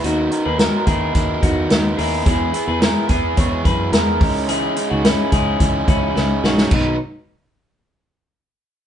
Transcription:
<<
  \new Staff \with { instrumentName = "Clean electric guitar" } { \time 4/4 \key b \major \tempo 4 = 108 <dis' fis'>8. <gis' b'>16 <fis' ais'>8 <e' gis'>4 <dis' fis'>4 <e' gis'>8 | <e' gis'>8. <gis' b'>16 <e' ais'>8 <e' gis'>8 <gis' cis''>8 <gis' b'>8 <e' ais'>4 | <e' gis'>8. <dis' fis'>16 <cis' e'>8 <e' gis'>4 <cis' e'>4 <dis' fis'>8 | dis'8 r2. r8 | }
  \new Staff \with { instrumentName = "Overdriven electric guitar" } { \time 4/4 \key b \major <dis fis b dis' ais'>8 <b dis' ais'>8 <fis b dis' ais'>8 <b dis' ais'>8 <dis fis b dis' ais'>4 <fis b dis' ais'>8 <b dis' ais'>8 | <e gis b e' gis'>8 <b e' gis'>8 <gis b e' gis'>8 <b e' gis'>8 <e gis b e' gis'>4 <gis b e' gis'>8 <gis cis' dis' gis'>8 | <cis e gis cis' dis' gis'>8 <gis cis' dis' gis'>8 <gis cis' dis' gis'>8 <gis cis' dis' gis'>8 <cis e gis cis' dis' gis'>4 <gis cis' dis' gis'>4 | <b, dis fis b dis' b'>8 r2. r8 | }
  \new Staff \with { instrumentName = "Fingered electric bass" } { \clef bass \time 4/4 \key b \major dis,8 r16 dis,8 r16 dis,8 dis,8 e,8 dis,8 dis,8 | e,8 r16 e,8 r16 e,8 e,8 fis,8 e,8 cis,8~ | cis,8 r16 cis,8 r16 cis,8 cis,8 cis,8 cis,8 ais,,8 | b,,8 r2. r8 | }
  \new DrumStaff \with { instrumentName = "Drums" } \drummode { \time 4/4 hh8 hh8 <hh sn>8 <hh bd>8 <hh bd>8 <hh bd>8 <hh sn>8 hho8 | <hh bd>8 hh8 <hh sn>8 <hh bd>8 <hh bd>8 <hh bd>8 <hh sn>8 <hho bd>8 | hh8 hh8 <hh sn>8 <hh bd>8 <hh bd>8 <hh bd>8 sn8 sn16 sn16 | <cymc bd>4 r4 r4 r4 | }
>>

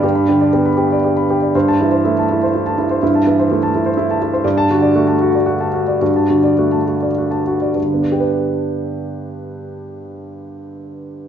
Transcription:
<<
  \new Staff \with { instrumentName = "Upright piano" } { \time 3/4 \key g \major \tempo 4 = 118 << { r2. | r16 a''8 r2 r16 | r2. | r16 a''8 r2 r16 |
r2. | <g, d b d' g' b'>2.~ | <g, d b d' g' b'>2. | } \\ { <g' d''>16 b''16 g'16 d''16 g'16 b''16 g'16 d''16 g'16 b''16 g'16 d''16 | c''8 e'16 c''16 e'16 a''16 e'16 c''16 e'16 a''16 e'16 c''16 | e'16 a''16 e'16 c''16 e'16 a''16 e'16 c''16 e'16 a''16 e'16 c''16 | d''8 fis'16 d''16 fis'16 a''16 fis'16 d''16 fis'16 a''16 fis'16 d''16 |
fis'16 a''16 fis'16 d''16 fis'16 a''16 fis'16 d''16 fis'16 a''16 fis'16 d''16 | r2. | r2. | } >> }
  \new Staff \with { instrumentName = "Upright piano" } { \clef bass \time 3/4 \key g \major g,8 d8 b4 r4 | g,8 e8 a4 r4 | g,8 e8 a4 r4 | g,8 d8 a4 r4 |
g,8 d8 a4 r4 | r2. | r2. | }
>>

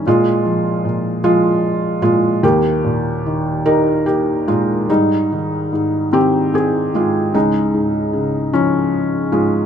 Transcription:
<<
  \new Staff \with { instrumentName = "Felt piano" } { \time 6/8 \key ees \mixolydian \tempo 4. = 50 <aes f'>4. <aes f'>4 <aes f'>8 | <bes g'>4. <ees' bes'>8 <bes g'>8 <aes f'>8 | <g ees'>4. <c' g'>8 <c' aes'>8 <aes f'>8 | <aes ees'>4. des'4 <aes f'>8 | }
  \new Staff \with { instrumentName = "Felt piano" } { \clef bass \time 6/8 \key ees \mixolydian bes,8 f8 bes,8 f4 bes,8 | ees,8 bes,8 ees8 g'4 bes,8 | aes,8 ees8 aes,8 ees4 aes,8 | des,8 aes,8 des8 f4 aes,8 | }
>>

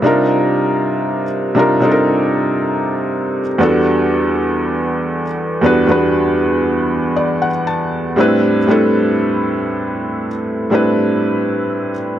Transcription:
\new Staff \with { instrumentName = "Felt piano" } { \time 4/4 \key a \minor \tempo 4 = 59 << { r1 | r2. d''16 fis''16 a''8 | r1 | } \\ { <c g d' ees' f' bes'>4~ <c g d' ees' f' bes'>16 r16 <c g d' ees' f' bes'>16 <c g d' ees' f' a' bes'>4. r16 <e, g b d' fis' a'>8~ | <e, g b d' fis' a'>4 r8 <e, g b d' fis' b'>16 <e, g b d' fis' b'>4. r8. | <a, g c' d' e' b'>8 <a, g c' d' e' a'>4. r8 <a, g c' d' e' b'>4~ <a, g c' d' e' b'>16 r16 | } >> }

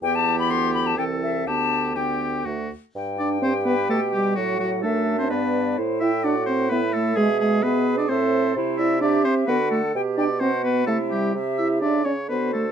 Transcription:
<<
  \new Staff \with { instrumentName = "Flute" } { \time 3/4 \key g \major \tempo 4 = 128 g''16 a''8 b''16 c'''8 b''16 a''16 g''8 e''8 | a''4 g''4 r4 | g''2. | fis''4 e''4 d''4 |
c''8 g''8 fis''4 e''4~ | e''2 e''4 | c''8 d''8 e''4 fis''4 | g''8 g''8 fis''4 e''4 |
e''4 e''8 d''8 c''4 | }
  \new Staff \with { instrumentName = "Oboe" } { \time 3/4 \key g \major g'2 a'4 | g'4 g'4 fis'8 r8 | r8 d''8 c''8 b'8 a'8 g'8 | fis'8 fis'8 a'8. c''16 b'4 |
r8 e''8 d''8 c''8 b'8 a'8 | gis'8 gis'8 b'8. d''16 c''4 | r8 e''8 d''8 c''8 b'8 a'8 | r8 d''8 c''8 b'8 a'8 g'8 |
r8 e''8 d''8 cis''8 b'8 a'8 | }
  \new Staff \with { instrumentName = "Clarinet" } { \time 3/4 \key g \major b2 c'4 | b4 b4 a8 r8 | r4 g'2 | fis'4 d'2 |
e'4 fis'4 e'4 | gis'4 gis'4 a'4 | e'4 g'4 fis'4 | g'4 fis'4 e'4 |
g'4. r8 fis'4 | }
  \new Staff \with { instrumentName = "French horn" } { \time 3/4 \key g \major e2 e4 | d4 d4 d8 r8 | r8 d'8 c'8 b8 a8 g8 | fis8 fis8 a8. c'16 b4 |
r8 e'8 d'8 c'8 b8 a8 | gis8 gis8 b8. d'16 c'4 | r8 e'8 d'8 c'8 b8 a8 | r8 d'8 c'8 b8 a8 g8 |
r8 e'8 d'8 cis'8 b8 a8 | }
  \new Staff \with { instrumentName = "Bassoon" } { \clef bass \time 3/4 \key g \major e,4 d,4 c,4 | d,2 d,8 r8 | g,2 b,4 | a,4 fis,4 g,4 |
a,2. | b,2 a,4 | c4. r8 d4 | b,2 c4 |
c4 cis4 d4 | }
>>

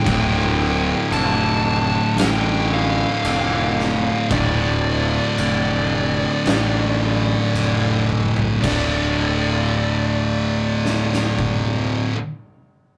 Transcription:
<<
  \new Staff \with { instrumentName = "Lead electric guitar" } { \time 4/4 \key d \minor \tempo 4 = 56 g''4 a''4 g''8 f''4. | d''4 d''2~ d''8 r8 | d''1 | }
  \new Staff \with { instrumentName = "Distorted electric guitar" } { \clef bass \time 4/4 \key d \minor <d, a, d>2 <d, a, d>2 | <d, a, d>2 <d, a, d>2 | <d, a, d>1 | }
  \new Staff \with { instrumentName = "Distorted electric guitar" } { \clef bass \time 4/4 \key d \minor <d, a, d>1 | <d, a, d>1 | <d, a, d>1 | }
  \new Staff \with { instrumentName = "Fingered electric bass" } { \clef bass \time 4/4 \key d \minor d,,4 f,,4 a,,4 f,,4 | d,,4 f,,4 a,,4 f,,4 | d,,1 | }
  \new DrumStaff \with { instrumentName = "Drums" } \drummode { \time 4/4 <cymc bd>4 cymc4 <cymc sn>4 cymc8 sn8 | <cymc bd>4 cymc4 <cymc sn>4 cymc8 bd16 tomfh16 | <cymc bd>4 r4 sn16 sn16 bd8 r4 | }
>>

